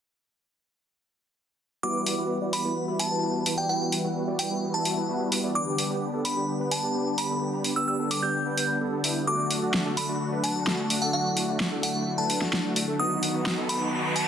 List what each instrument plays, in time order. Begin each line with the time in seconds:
1.83 analog synth pad E3 G3 B3 F#4, supersaw synth G3 B3 E4 F#4 B4, synth bell D6
2.06 open hi-hat
2.18 supersaw synth G3 B3 E4 F#4 B4
2.41 supersaw synth G3 B3 E4 F#4 D5
2.53 synth bell B5, open hi-hat
2.65 supersaw synth G3 B3 E4 F#4 B4
2.76 supersaw synth G3 B3 E4 F#4 B4
2.88 supersaw synth G3 B3 E4 F#4 E5
3.00 synth bell A5, open hi-hat
3.11 supersaw synth G3 B3 E4 F#4 B4
3.23 supersaw synth G3 B3 E4 F#4 B4
3.46 supersaw synth G3 B3 E4 F#4 B4, open hi-hat
3.57 supersaw synth G3 B3 E4 F#4 D5, synth bell G5
3.69 supersaw synth G3 B3 E4 F#4 B4, synth bell G5
3.92 open hi-hat
4.04 supersaw synth G3 B3 E4 F#4 B4
4.27 supersaw synth G3 B3 E4 F#4 D5
4.39 synth bell G5, open hi-hat
4.51 supersaw synth G3 B3 E4 F#4 B4
4.62 supersaw synth G3 B3 E4 F#4 B4
4.74 supersaw synth G3 B3 E4 F#4 E5, synth bell A5
4.85 open hi-hat
4.97 supersaw synth G3 B3 E4 F#4 B4
5.09 supersaw synth G3 B3 E4 F#4 B4
5.32 supersaw synth G3 B3 E4 F#4 B4, open hi-hat
5.44 supersaw synth G3 B3 E4 F#4 D5
5.55 analog synth pad D3 G3 G4, supersaw synth B3 D4 G4, synth bell D6
5.78 open hi-hat
5.90 supersaw synth B3 D4 G4
6.13 supersaw synth B3 D4 A4
6.25 synth bell B5, open hi-hat
6.37 supersaw synth B3 D4 G4
6.48 supersaw synth B3 D4 G4
6.60 supersaw synth B3 D4 B4
6.71 synth bell A5, open hi-hat
6.83 supersaw synth B3 D4 G4
6.95 supersaw synth B3 D4 G4
7.18 synth bell B5, open hi-hat
7.30 supersaw synth B3 D4 A4
7.41 supersaw synth B3 D4 G4
7.64 open hi-hat
7.76 supersaw synth B3 D4 G4, synth bell E6
7.88 synth bell E6
7.99 supersaw synth B3 D4 A4
8.11 synth bell D6, open hi-hat
8.23 supersaw synth B3 D4 G4, synth bell G6
8.34 supersaw synth B3 D4 G4
8.46 supersaw synth B3 D4 B4
8.57 supersaw synth B3 D4 B4, open hi-hat
8.81 supersaw synth B3 D4 A4
8.92 supersaw synth B3 D4 A4
9.04 supersaw synth B3 D4 E4, open hi-hat
9.27 analog synth pad F#3 A3 F#4, supersaw synth A3 D4 F#4, synth bell D6
9.51 open hi-hat
9.62 supersaw synth A3 D4 F#4
9.74 snare
9.86 supersaw synth A3 D4 A4
9.97 synth bell B5, open hi-hat
10.09 supersaw synth A3 D4 F#4
10.21 supersaw synth A3 D4 F#4
10.32 supersaw synth A3 D4 B4
10.44 synth bell A5, open hi-hat
10.55 supersaw synth A3 D4 F#4
10.67 supersaw synth A3 D4 F#4, snare
10.90 supersaw synth A3 D4 F#4, open hi-hat
11.02 supersaw synth A3 D4 A4, synth bell F#5
11.13 supersaw synth A3 D4 F#4, analog synth pad E4, synth bell F#5
11.37 open hi-hat
11.48 supersaw synth A3 D4 F#4
11.60 snare
11.72 supersaw synth A3 D4 A4
11.83 synth bell F#5, open hi-hat
11.95 supersaw synth A3 D4 F#4
12.07 supersaw synth A3 D4 F#4
12.18 supersaw synth A3 D4 B4, synth bell A5
12.30 open hi-hat
12.41 supersaw synth A3 D4 F#4, snare
12.53 supersaw synth A3 D4 F#4, snare
12.76 supersaw synth A3 D4 F#4, open hi-hat
12.88 supersaw synth A3 D4 A4
12.99 analog synth pad D#3 B3 F#4, supersaw synth B3 D#4 F#4, synth bell D#6, riser
13.23 open hi-hat
13.34 supersaw synth B3 D#4 F#4
13.46 snare
13.58 supersaw synth B3 D#4 A4
13.69 synth bell B5, open hi-hat
13.81 supersaw synth B3 D#4 F#4
13.93 supersaw synth B3 D#4 F#4
14.04 supersaw synth B3 D#4 B4
14.16 synth bell A5, open hi-hat